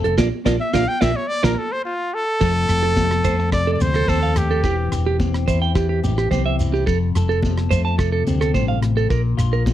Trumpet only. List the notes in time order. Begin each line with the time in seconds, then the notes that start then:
0.60 E5
0.73 F5
0.88 G5
1.01 E5
1.16 C#5
1.28 D5
1.44 A#4
1.58 A4
1.72 C5
1.85 F4
2.14 A4
3.52 D5
3.73 D5
3.81 C5
4.09 A4
4.38 G4